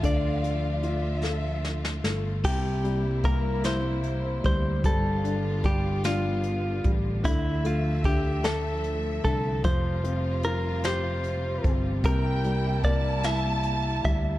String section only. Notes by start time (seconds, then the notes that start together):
Already playing: D3 F3 F4
0.03 A3
2.44 C3 G3 A#3 E4
4.85 D3 B3 F4
7.24 F3 A3 E5
9.65 C3 G3 F4
12.04 A#3 E4